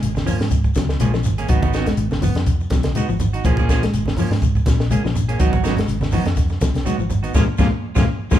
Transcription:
0.02 fingered electric bass G#1, closed hi-hat, high conga, shekere
0.15 muted clean electric guitar stroke, snare, high conga, shekere
0.26 clean electric guitar F3 A#3 C#4, muted clean electric guitar stroke, open hi-hat, low conga, shekere
0.39 fingered electric bass G#2, muted clean electric guitar stroke, snare, high conga, shekere
0.51 muted clean electric guitar stroke, kick, closed hi-hat, shekere
0.64 muted clean electric guitar stroke, kick, shekere
0.75 fingered electric bass C#2, clean electric guitar F#3, muted clean electric guitar stroke, kick, snare, closed hi-hat, high conga, shekere
0.89 snare, shekere
1.00 fingered electric bass A#1, clean electric guitar F3 G#3 A#3 C#4 G#4, snare, closed hi-hat, high conga, shekere
1.13 clean electric guitar F3, muted clean electric guitar stroke, snare, shekere
1.24 fingered electric bass G#1, muted clean electric guitar stroke, closed hi-hat, low conga, shekere
1.38 clean electric guitar A#3 C#4 G#4, closed hi-hat, shekere
1.48 fingered electric bass G#1, clean electric guitar F#3 B3 D#4 F#4, kick, closed hi-hat, shekere
1.62 clean electric guitar B3 D#4 F#4, kick, high conga, shekere
1.73 clean electric guitar B3 D#4 F#4, snare, closed hi-hat, shekere
1.86 clean electric guitar G#3, muted clean electric guitar stroke, snare, closed hi-hat, low conga, shekere
1.97 fingered electric bass G#1, closed hi-hat, high conga, shekere
2.11 muted clean electric guitar stroke, snare, high conga, shekere
2.22 clean electric guitar F3 B3, muted clean electric guitar stroke, open hi-hat, high conga, low conga, shekere
2.35 fingered electric bass F2, muted clean electric guitar stroke, snare, closed hi-hat, high conga, shekere
2.46 muted clean electric guitar stroke, kick, closed hi-hat, shekere
2.60 muted clean electric guitar stroke, shekere
2.70 fingered electric bass B1, clean electric guitar F#3, muted clean electric guitar stroke, kick, snare, closed hi-hat, high conga, shekere
2.83 snare, closed hi-hat, high conga, shekere
2.95 clean electric guitar G#3 B3 D#4 F#4, closed hi-hat, high conga, shekere
3.09 fingered electric bass G#1, clean electric guitar F3, muted clean electric guitar stroke, shekere
3.20 muted clean electric guitar stroke, closed hi-hat, low conga, shekere
3.33 clean electric guitar D#4 F#4, closed hi-hat, shekere
3.44 fingered electric bass A#1, clean electric guitar F3 A#3 C#4 G#4, kick, closed hi-hat, high conga, shekere
3.57 clean electric guitar F3 A#3 C#4 G#4, kick, high conga, shekere
3.69 clean electric guitar F3 A#3 C#4 G#4, kick, snare, closed hi-hat, shekere
3.83 clean electric guitar G#3, muted clean electric guitar stroke, snare, closed hi-hat, shekere
3.92 fingered electric bass G#1, closed hi-hat, high conga, shekere
4.05 muted clean electric guitar stroke, snare, high conga, shekere
4.17 clean electric guitar F3 A#3 C#4, open hi-hat, low conga, shekere
4.30 fingered electric bass G#2, muted clean electric guitar stroke, snare, high conga, shekere
4.42 muted clean electric guitar stroke, kick, closed hi-hat, shekere
4.55 muted clean electric guitar stroke, kick, shekere
4.66 fingered electric bass A#1, clean electric guitar F#3, muted clean electric guitar stroke, kick, snare, closed hi-hat, high conga, shekere
4.80 snare, shekere
4.90 clean electric guitar G#3 A#3 C#4 G#4, muted clean electric guitar stroke, closed hi-hat, high conga, shekere
5.03 fingered electric bass A#1, clean electric guitar F3, muted clean electric guitar stroke, snare, shekere
5.15 muted clean electric guitar stroke, closed hi-hat, low conga, shekere
5.29 clean electric guitar A#3 C#4 G#4, closed hi-hat, shekere
5.39 fingered electric bass G#1, clean electric guitar F#3 B3 D#4 F#4, kick, closed hi-hat, shekere
5.53 clean electric guitar F#3 F#4, muted clean electric guitar stroke, kick, high conga, shekere
5.63 clean electric guitar F#3 B3 D#4 F#4, snare, closed hi-hat, shekere
5.76 clean electric guitar G#3, muted clean electric guitar stroke, snare, closed hi-hat, low conga, shekere
5.88 fingered electric bass G#1, closed hi-hat, high conga, shekere
6.01 muted clean electric guitar stroke, snare, high conga, shekere
6.11 clean electric guitar F3 F#3 B3 D#4 F#4, open hi-hat, low conga, shekere
6.24 fingered electric bass F2, muted clean electric guitar stroke, snare, closed hi-hat, high conga, shekere
6.36 muted clean electric guitar stroke, kick, snare, closed hi-hat, shekere
6.49 muted clean electric guitar stroke, snare, shekere
6.61 fingered electric bass B1, clean electric guitar F#3, muted clean electric guitar stroke, kick, snare, closed hi-hat, high conga, shekere
6.74 snare, closed hi-hat, high conga, shekere
6.85 clean electric guitar F#3 G#3 B3 D#4 F#4, closed hi-hat, high conga, shekere
6.98 fingered electric bass G#1, clean electric guitar F3, muted clean electric guitar stroke, shekere
7.10 muted clean electric guitar stroke, closed hi-hat, low conga, shekere
7.23 clean electric guitar B3 D#4 F#4, closed hi-hat, shekere
7.34 fingered electric bass A#1, clean electric guitar F3 G#3 A#3 C#4 F4, kick, snare, low conga, shekere
7.58 fingered electric bass A#1, clean electric guitar F3 G#3 A#3 C#4 F4, kick, snare, low conga, shekere
7.95 fingered electric bass A#1, clean electric guitar F3 G#3 A#3 C#4 F4, kick, snare, low conga, shekere
8.31 fingered electric bass A#1, clean electric guitar F3 G#3 A#3 C#4 F4, kick, snare, low conga, shekere

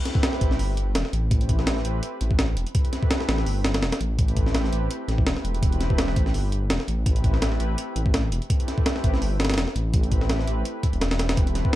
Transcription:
Already playing: analog synth pad A3 C4 E4 G4 B4
0.05 snare, closed hi-hat
0.15 kick
0.23 snare, closed hi-hat
0.33 snare
0.41 detuned saw bass A1, analog synth pad A3 C4 E4 G4 B4, kick, closed hi-hat
0.51 snare
0.59 detuned saw bass G1, open hi-hat
0.77 closed hi-hat
0.95 detuned saw bass E1, snare, closed hi-hat
1.05 snare
1.13 detuned saw bass A1, closed hi-hat
1.31 analog synth pad A3 C4 E4 G4 B4, kick, closed hi-hat
1.41 closed hi-hat
1.49 kick, closed hi-hat
1.59 snare
1.67 snare, closed hi-hat
1.77 snare
1.85 detuned saw bass A1, analog synth pad A3 C4 E4 G4 B4, closed hi-hat
2.03 closed hi-hat
2.21 detuned saw bass A1, closed hi-hat
2.31 kick
2.39 snare, closed hi-hat
2.57 detuned saw bass E1, closed hi-hat
2.67 closed hi-hat
2.75 analog synth pad A3 C4 E4 G4 B4, kick, closed hi-hat
2.85 closed hi-hat
2.93 snare, closed hi-hat
3.03 kick
3.11 snare, closed hi-hat
3.20 snare
3.28 detuned saw bass A1, analog synth pad A3 C4 E4 G4 B4, snare, closed hi-hat
3.38 snare
3.46 detuned saw bass G1, open hi-hat
3.65 snare, closed hi-hat
3.74 snare, closed hi-hat
3.83 detuned saw bass E1, snare, closed hi-hat
3.92 snare, closed hi-hat
4.00 detuned saw bass A1, closed hi-hat
4.18 analog synth pad A3 C4 E4 G4 B4, kick, closed hi-hat
4.28 closed hi-hat
4.37 kick, closed hi-hat
4.46 snare
4.55 snare, closed hi-hat
4.64 snare
4.72 detuned saw bass A1, analog synth pad A3 C4 E4 G4 B4, closed hi-hat
4.91 closed hi-hat
5.08 detuned saw bass A1, snare, closed hi-hat
5.18 kick
5.26 detuned saw bass E1, snare, closed hi-hat
5.36 analog synth pad A3 C4 E4 G4 B4, snare
5.44 detuned saw bass E1, closed hi-hat
5.55 closed hi-hat
5.62 analog synth pad A3 C4 E4 G4 B4, kick, closed hi-hat
5.72 closed hi-hat
5.81 snare, closed hi-hat
5.90 kick
5.98 snare, closed hi-hat
6.08 snare
6.16 detuned saw bass A1, analog synth pad A3 C4 E4 G4 B4, kick, closed hi-hat
6.26 snare
6.34 detuned saw bass G1, open hi-hat
6.52 closed hi-hat
6.70 detuned saw bass E1, snare, closed hi-hat
6.80 snare
6.88 detuned saw bass A1, closed hi-hat
7.06 analog synth pad A3 C4 E4 G4 B4, kick, closed hi-hat
7.16 closed hi-hat
7.24 kick, closed hi-hat
7.34 snare
7.42 snare, closed hi-hat
7.52 snare
7.60 detuned saw bass A1, analog synth pad A3 C4 E4 G4 B4, closed hi-hat
7.78 closed hi-hat
7.96 detuned saw bass A1, closed hi-hat
8.06 kick
8.14 snare, closed hi-hat
8.32 detuned saw bass E1, closed hi-hat
8.42 closed hi-hat
8.50 analog synth pad A3 C4 E4 G4 B4, kick, closed hi-hat
8.60 closed hi-hat
8.68 snare, closed hi-hat
8.78 kick
8.86 snare, closed hi-hat
8.96 snare
9.03 detuned saw bass A1, analog synth pad A3 C4 E4 G4 B4, kick, closed hi-hat
9.14 snare
9.22 detuned saw bass G1, open hi-hat
9.40 snare, closed hi-hat
9.45 snare, closed hi-hat
9.50 snare, closed hi-hat
9.54 detuned saw bass E1, snare, closed hi-hat
9.58 snare, closed hi-hat
9.68 snare
9.75 detuned saw bass A1, closed hi-hat
9.93 analog synth pad A3 C4 E4 G4 B4, kick, closed hi-hat
10.03 closed hi-hat
10.12 kick, closed hi-hat
10.21 snare
10.29 snare, closed hi-hat
10.39 snare
10.47 detuned saw bass A1, analog synth pad A3 C4 E4 G4 B4, closed hi-hat
10.65 closed hi-hat
10.83 kick, closed hi-hat
10.93 detuned saw bass E1, closed hi-hat
11.01 snare, closed hi-hat
11.11 analog synth pad A3 C4 E4 G4 B4, snare, closed hi-hat
11.19 snare, closed hi-hat
11.29 snare, closed hi-hat
11.37 analog synth pad A3 C4 E4 G4 B4, kick, closed hi-hat
11.47 closed hi-hat
11.55 snare, closed hi-hat
11.65 kick

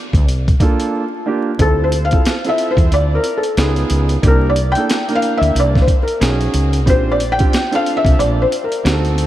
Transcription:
Already playing: felt piano D5
0.13 fretless electric bass D2, kick, closed hi-hat
0.28 fretless electric bass C2, closed hi-hat
0.48 kick, closed hi-hat
0.60 grand piano A#3 D4 F4 A4, kick, closed hi-hat
0.80 closed hi-hat
1.26 grand piano A#3 D4 F4 G4
1.59 fretless electric bass D2, grand piano C4 E4 F4 A4, felt piano A4, kick, closed hi-hat
1.84 felt piano C5
1.92 closed hi-hat
2.05 felt piano F5
2.11 grand piano C4 E4 F4 A4, kick, closed hi-hat
2.25 snare, closed hi-hat
2.44 grand piano C4 E4 F4 A4, closed hi-hat
2.49 felt piano E5
2.58 closed hi-hat
2.71 felt piano C5
2.77 fretless electric bass E2, kick, closed hi-hat
2.92 fretless electric bass D2, felt piano D5, closed hi-hat
3.15 felt piano A#4
3.24 closed hi-hat
3.37 felt piano A4
3.43 closed hi-hat
3.57 fretless electric bass C#2, grand piano B3 D#4 F4 G#4, snare, closed hi-hat
3.76 closed hi-hat
3.90 fretless electric bass C#2, closed hi-hat
4.09 closed hi-hat
4.22 fretless electric bass C2, grand piano A#3 D4 E4 G4, kick, closed hi-hat
4.27 felt piano A#4
4.50 felt piano D5
4.56 closed hi-hat
4.72 felt piano G5, closed hi-hat
4.76 grand piano A#3 D4 E4 A4
4.90 snare, closed hi-hat
5.08 grand piano A#3 D4 E4 A#4, closed hi-hat
5.15 felt piano F5
5.22 closed hi-hat
5.37 fretless electric bass D2, felt piano E5
5.43 closed hi-hat
5.55 fretless electric bass C2, closed hi-hat
5.60 felt piano D5
5.76 kick, snare
5.82 felt piano C5
5.88 kick, closed hi-hat
6.03 felt piano A#4
6.08 closed hi-hat
6.20 fretless electric bass B1, grand piano C#4 D#4 F#4 G#4, snare, closed hi-hat
6.41 closed hi-hat
6.54 fretless electric bass C#2, closed hi-hat
6.73 closed hi-hat
6.86 fretless electric bass A#1, grand piano C4 D4 F4 G4, felt piano C5, kick, closed hi-hat
7.11 felt piano D5
7.20 closed hi-hat
7.32 felt piano G5
7.39 grand piano C4 D4 F4 G4, kick, closed hi-hat
7.53 snare, closed hi-hat
7.71 grand piano C4 D4 F4 A4, felt piano F5, closed hi-hat
7.86 closed hi-hat
7.97 felt piano E5
8.05 fretless electric bass C2, kick, closed hi-hat
8.19 fretless electric bass A#1, felt piano D5, closed hi-hat
8.42 felt piano C5
8.52 closed hi-hat
8.64 felt piano A#4
8.72 closed hi-hat
8.84 fretless electric bass D2, grand piano C4 D#4 F#4 G4, snare, closed hi-hat
8.92 grand piano A4
9.05 closed hi-hat
9.18 closed hi-hat

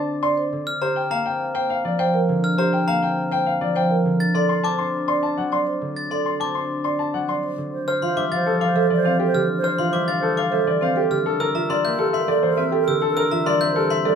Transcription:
Already playing: harp D3 C4 D4, grand piano A5
0.23 marimba D5, grand piano C6
0.37 marimba C5
0.53 harp D3
0.67 glockenspiel F6
0.82 marimba G4, grand piano C5, glockenspiel A#5
0.96 grand piano G5
1.11 harp A#3, grand piano F5, glockenspiel A#5
1.26 harp C4, grand piano G5
1.55 marimba C5, grand piano G5
1.70 grand piano F5
1.84 harp F3, grand piano D5
1.99 marimba C5, grand piano G5
2.14 marimba A#4
2.29 harp D3
2.44 glockenspiel F6
2.58 marimba G4, grand piano C5, glockenspiel A#5
2.73 grand piano G5
2.87 harp A#3, grand piano F5, glockenspiel A#5
3.02 harp C4, grand piano G5
3.32 marimba C5, grand piano G5
3.46 grand piano F5
3.61 harp F3, grand piano D5
3.76 marimba C5, grand piano G5
3.90 marimba A#4
4.05 harp D3
4.20 glockenspiel A6
4.34 marimba A4, grand piano D5, glockenspiel C6
4.49 grand piano C6
4.63 harp C4, grand piano A5, glockenspiel D6
4.79 harp D4, grand piano C6
5.08 marimba D5, grand piano C6
5.23 grand piano A5
5.37 harp F#3, grand piano F#5
5.52 marimba D5, grand piano C6
5.67 marimba C5
5.81 harp D3
5.96 glockenspiel A6
6.11 marimba A4, grand piano D5, glockenspiel C6
6.26 grand piano C6
6.40 harp C4, grand piano A5, glockenspiel D6
6.55 harp D4, grand piano C6
6.84 marimba D5, grand piano C6
6.99 grand piano A5
7.14 harp F#3, grand piano F#5
7.28 marimba D5, grand piano C6
7.43 marimba C5
7.58 harp D3
7.73 alto flute C5
7.88 grand piano C5, glockenspiel F6
8.02 harp E3, marimba F4, alto flute C5, grand piano F5, glockenspiel C6
8.16 harp G3, marimba D4, grand piano E5, glockenspiel D6
8.31 harp F3, alto flute C5, grand piano F5, glockenspiel A6
8.46 grand piano A4
8.61 grand piano F5, glockenspiel D6
8.66 alto flute C5
8.76 harp G3, marimba A4, grand piano E5
8.90 harp E3, grand piano D5
8.96 alto flute C5
9.05 marimba C4, grand piano F5
9.19 grand piano G4, marimba A4
9.27 alto flute C5
9.34 harp D3, marimba G4, glockenspiel F6
9.57 alto flute C5
9.63 grand piano C5, glockenspiel F6
9.78 harp E3, marimba F4, grand piano F5, glockenspiel C6
9.88 alto flute C5
9.93 harp G3, marimba D4, grand piano E5, glockenspiel D6
10.08 grand piano F5, glockenspiel A6
10.19 grand piano A4, alto flute C5
10.37 grand piano F5, glockenspiel D6
10.49 harp G3, marimba A4, alto flute C5, grand piano E5
10.67 harp E3, grand piano D5
10.80 marimba C4, alto flute C5, grand piano F5
10.96 grand piano G4, marimba A4
11.11 harp D3, marimba G4, glockenspiel F6
11.26 grand piano A4, alto flute A#4
11.40 grand piano A#4, glockenspiel E6
11.55 harp E3, marimba F4, alto flute A#4, grand piano E5, glockenspiel A#5
11.69 harp G3, marimba D4, grand piano D5, glockenspiel C6
11.84 harp A#3, alto flute A#4, grand piano E5, glockenspiel G6
11.99 marimba G4, grand piano A4
12.13 grand piano E5, glockenspiel C6
12.18 alto flute A#4
12.28 harp G3, marimba A4, grand piano D5
12.43 harp E3, grand piano C5
12.49 alto flute A#4
12.57 marimba C4, grand piano E5
12.72 grand piano G4, marimba A4
12.80 alto flute A#4
12.87 harp D3, marimba G4, glockenspiel E6
13.02 grand piano A4
13.10 alto flute A#4
13.17 grand piano A#4, glockenspiel E6
13.31 harp E3, marimba F4, grand piano E5, glockenspiel A#5
13.41 alto flute A#4
13.46 harp G3, marimba D4, grand piano D5, glockenspiel C6
13.61 harp C4, grand piano E5, glockenspiel G6
13.72 marimba G4, grand piano A4, alto flute A#4
13.90 grand piano E5, glockenspiel C6
14.03 harp G3, marimba A4, alto flute A#4, grand piano D5

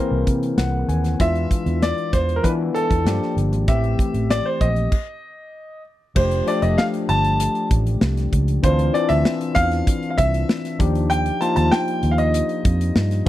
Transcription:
Already playing: tine electric piano E3 A#3 C4 G#4 A#4, grand piano C5
0.11 fingered electric bass C2
0.27 fingered electric bass C3, kick, closed hi-hat
0.43 closed hi-hat
0.57 fingered electric bass C2, tine electric piano F#5, snare, closed hi-hat
0.89 fingered electric bass D#2, tine electric piano G#5, closed hi-hat
1.04 snare, closed hi-hat
1.19 fingered electric bass E2, tine electric piano E3 G#3 D4 F4, grand piano E5, kick, closed hi-hat
1.35 closed hi-hat
1.51 kick, closed hi-hat
1.66 fingered electric bass E2, closed hi-hat
1.82 grand piano D5, snare, closed hi-hat
1.98 closed hi-hat
2.13 fingered electric bass E2, grand piano C5, kick, snare, closed hi-hat
2.29 closed hi-hat
2.36 grand piano A#4
2.43 tine electric piano E3 B3 D4 E4, fingered electric bass E3, grand piano B4, kick, closed hi-hat
2.75 grand piano A4, closed hi-hat
2.91 fingered electric bass E2, kick, closed hi-hat
3.05 fingered electric bass G2, tine electric piano F3 A#3 D4 G4, snare, closed hi-hat
3.22 snare
3.37 fingered electric bass G1, closed hi-hat
3.52 fingered electric bass G#1, closed hi-hat
3.68 fingered electric bass A1, tine electric piano E3 A3 C4 G4, grand piano E5, kick, closed hi-hat
3.84 closed hi-hat
3.99 kick, closed hi-hat
4.14 fingered electric bass A1, closed hi-hat
4.30 grand piano D5, snare, closed hi-hat
4.46 grand piano C5
4.61 fingered electric bass A#1, grand piano D#5, kick, closed hi-hat
4.76 closed hi-hat
4.92 kick, crash
6.15 fingered electric bass F1, tine electric piano F3 A3 D4 G4, grand piano C5, kick, crash
6.31 closed hi-hat
6.46 tine electric piano F3 A3 D4 G4, grand piano D5, closed hi-hat
6.62 fingered electric bass F1, grand piano D#5, closed hi-hat
6.78 grand piano F5, snare
6.94 closed hi-hat
7.09 fingered electric bass G1, grand piano A5, closed hi-hat
7.24 closed hi-hat
7.40 closed hi-hat
7.55 closed hi-hat
7.71 fingered electric bass A1, kick, closed hi-hat
7.87 closed hi-hat
8.01 fingered electric bass C2, snare
8.17 snare, closed hi-hat
8.32 fingered electric bass C#2, kick, closed hi-hat
8.48 closed hi-hat
8.63 fingered electric bass D2, tine electric piano E3 C4 D4 F4, grand piano C5, kick, closed hi-hat
8.79 closed hi-hat
8.94 tine electric piano E3 C4 D4, grand piano D5, closed hi-hat
9.09 fingered electric bass D2, grand piano E5, closed hi-hat
9.25 snare
9.41 closed hi-hat
9.55 fingered electric bass E2, grand piano F5, kick, closed hi-hat
9.72 snare, closed hi-hat
9.87 kick, closed hi-hat
10.03 closed hi-hat
10.10 grand piano F5
10.18 fingered electric bass C2, grand piano E5, kick, closed hi-hat
10.34 closed hi-hat
10.49 snare
10.65 snare, closed hi-hat
10.79 fingered electric bass D#2, tine electric piano F3 D4 D#4 G4, kick, closed hi-hat
10.95 closed hi-hat
11.10 grand piano G5, closed hi-hat
11.26 closed hi-hat
11.41 tine electric piano F3 A#3 D#4 F4, grand piano A5, closed hi-hat
11.56 fingered electric bass D#2, grand piano A5, closed hi-hat
11.71 grand piano G5, snare
11.88 closed hi-hat
12.03 fingered electric bass D#2, closed hi-hat
12.11 grand piano F5
12.18 grand piano D#5, closed hi-hat
12.34 closed hi-hat
12.49 closed hi-hat
12.65 fingered electric bass F2, kick, closed hi-hat
12.81 closed hi-hat
12.95 fingered electric bass G2, snare
13.11 snare, closed hi-hat

